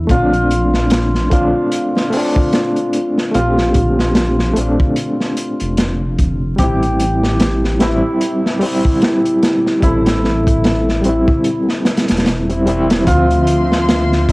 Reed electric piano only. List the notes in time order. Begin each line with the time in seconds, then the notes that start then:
Already playing: A#3 D4 E4
0.07 A3 C4
0.14 D4
1.30 A3 C4 D4
2.10 A3 C4
2.17 D4
3.31 A3 C4
3.39 G4
4.54 A3 C4
4.61 D4
6.56 G3 C4
6.64 E4
7.80 G3 C4 E4
8.59 G3 C4
8.66 E4
9.80 G3 C4
9.87 A4
11.02 G3 C4
11.09 E4
12.49 G3 C4 E4
12.66 G3 C4 E4
13.05 F3 C4
13.12 E5